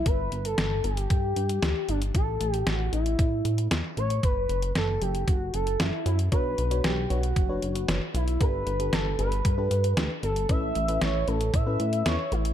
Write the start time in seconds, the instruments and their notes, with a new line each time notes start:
0.06 analog synth bass G1, analog synth lead B4, kick, closed hi-hat
0.32 analog synth bass G1, closed hi-hat
0.45 analog synth lead A4, closed hi-hat
0.58 analog synth bass G1, snare, closed hi-hat
0.84 analog synth bass G1, analog synth lead G4, closed hi-hat
0.97 closed hi-hat
1.10 analog synth bass G2, kick, closed hi-hat
1.36 analog synth bass G2, closed hi-hat
1.49 closed hi-hat
1.62 analog synth bass D2, snare, closed hi-hat
1.89 analog synth bass G1, analog synth lead D4, closed hi-hat
2.02 closed hi-hat
2.15 analog synth bass A1, analog synth lead A4, kick, closed hi-hat
2.41 analog synth bass A1, closed hi-hat
2.54 analog synth lead G4, closed hi-hat
2.67 analog synth bass A1, analog synth lead F#4, snare, closed hi-hat
2.93 analog synth bass A1, analog synth lead E4, closed hi-hat
3.06 closed hi-hat
3.19 analog synth bass A2, kick, closed hi-hat
3.45 analog synth bass A2, closed hi-hat
3.58 closed hi-hat
3.71 analog synth bass E2, snare, closed hi-hat
3.97 analog synth bass A1, analog synth lead C#5, closed hi-hat
4.10 closed hi-hat
4.23 analog synth bass F#1, analog synth lead B4, kick, closed hi-hat
4.49 analog synth bass F#1, closed hi-hat
4.62 closed hi-hat
4.75 analog synth bass F#1, analog synth lead A4, snare, closed hi-hat
5.01 analog synth bass F#1, analog synth lead G4, closed hi-hat
5.15 closed hi-hat
5.27 analog synth bass F#1, analog synth lead F#4, kick, closed hi-hat
5.53 analog synth bass F#1, analog synth lead A4, closed hi-hat
5.67 closed hi-hat
5.80 analog synth bass F#1, analog synth lead E4, snare, closed hi-hat
6.06 analog synth bass F#2, analog synth lead E4, closed hi-hat
6.19 closed hi-hat
6.32 analog synth bass B1, fm electric piano D4 F#4 B4 C#5, analog synth lead B4, kick, closed hi-hat
6.58 analog synth bass B1, closed hi-hat
6.71 fm electric piano D4 F#4 B4 C#5, closed hi-hat
6.84 analog synth bass B1, analog synth lead G4, snare, closed hi-hat
7.10 analog synth bass B1, fm electric piano D4 F#4 B4 C#5, analog synth lead F#4, closed hi-hat
7.23 closed hi-hat
7.36 analog synth bass F#1, kick, closed hi-hat
7.49 fm electric piano D4 F#4 B4 C#5
7.62 analog synth bass F#1, closed hi-hat
7.75 closed hi-hat
7.88 analog synth bass F#1, fm electric piano D4 F#4 B4 C#5, snare, closed hi-hat
8.14 analog synth bass B1, analog synth lead E4, closed hi-hat
8.28 closed hi-hat
8.41 analog synth bass G1, fm electric piano D4 G4 A4 B4, analog synth lead B4, kick, closed hi-hat
8.67 analog synth bass G1, closed hi-hat
8.80 fm electric piano D4 G4 A4 B4, closed hi-hat
8.93 analog synth bass G1, analog synth lead A4, snare, closed hi-hat
9.19 analog synth bass G1, fm electric piano D4 G4 A4 B4, analog synth lead B4, closed hi-hat
9.32 closed hi-hat
9.45 analog synth bass G2, kick, closed hi-hat
9.58 fm electric piano D4 G4 A4 B4
9.71 analog synth bass G2, closed hi-hat
9.84 closed hi-hat
9.97 analog synth bass D2, fm electric piano D4 G4 A4 B4, snare, closed hi-hat
10.23 analog synth bass G1, analog synth lead A4, closed hi-hat
10.36 closed hi-hat
10.49 analog synth bass A1, fm electric piano C#4 E4 A4 B4, analog synth lead E5, kick, closed hi-hat
10.75 analog synth bass A1, closed hi-hat
10.88 fm electric piano C#4 E4 A4 B4, closed hi-hat
11.01 analog synth bass A1, analog synth lead C#5, snare, closed hi-hat
11.28 analog synth bass A1, fm electric piano C#4 E4 A4 B4, analog synth lead A4, closed hi-hat
11.41 closed hi-hat
11.53 analog synth bass A2, analog synth lead E5, kick, closed hi-hat
11.67 fm electric piano C#4 E4 A4 B4
11.80 analog synth bass A2, closed hi-hat
11.93 closed hi-hat
12.06 analog synth bass E2, fm electric piano C#4 E4 A4 B4, analog synth lead C#5, snare, closed hi-hat
12.32 analog synth bass A1, analog synth lead E4, closed hi-hat
12.45 closed hi-hat